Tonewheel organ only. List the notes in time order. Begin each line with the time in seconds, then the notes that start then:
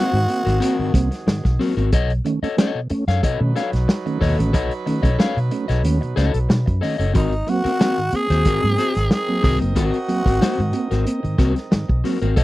Already playing: A#3 C4
0.14 G#2 D#3
0.29 A#3 C4
0.62 A#3 C4
0.79 G#2 D#3
0.94 A#3 C4
1.27 G#2 D#3
1.59 F#3 A#3 C4
1.78 A#3 C4
1.93 B2
2.25 D#3 A3 C#4
2.42 A3 C#4
2.57 A3 C#4
2.75 B2
2.90 A3 C#4
3.23 B2
3.40 D#3 A3 C#4
3.56 A3 C#4
4.06 D#3 A3 C#4
4.22 B2
4.39 D#3 A3 C#4
4.54 B2
4.86 D#3 A3 C#4
5.04 A3 C#4
5.19 A3 C#4
5.37 B2
5.52 A3 C#4
5.84 A3 C#4
6.02 B2
6.17 A3 C#4
6.50 B2
6.82 D#3 A3 C#4
7.00 A3 C#4
7.16 G#2 D#3
7.48 F#3 A#3 C4
7.66 A#3 C4
7.80 A#3 C4
7.98 G#2 D#3
8.13 A#3 C4
8.46 G#2 D#3
8.63 F#3 A#3 C4
8.78 A#3 C4
9.29 F#3 A#3 C4
9.44 G#2 D#3
9.61 F#3 A#3 C4
9.76 G#2 D#3
10.08 F#3 A#3 C4
10.26 A#3 C4
10.40 A#3 C4
10.58 G#2 D#3
10.73 A#3 C4
11.05 A#3 C4
11.23 G#2 D#3
11.38 A#3 C4
11.71 G#2 D#3
12.04 F#3 A#3 C4
12.21 A#3 C4
12.37 B2